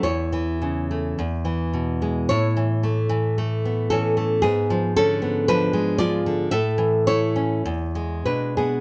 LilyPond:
\new Staff \with { instrumentName = "Nylon-string guitar" } { \time 2/4 \key a \major \tempo 4 = 55 << { <e' cis''>4 r4 | <e' cis''>4. <cis' a'>8 | <b gis'>8 <cis' a'>8 <d' b'>8 <eis' d''>8 | <a' e''>8 <e' cis''>4 <d' b'>16 <b gis'>16 | } \\ { e,16 e16 cis16 a16 e,16 e16 b,16 gis16 | a,16 e16 a16 e16 a16 b16 e16 a16 | gis,16 eis16 d16 b16 eis16 gis16 eis16 d16 | a,16 e16 a16 cis'16 e,16 gis16 b,16 d'16 | } >> }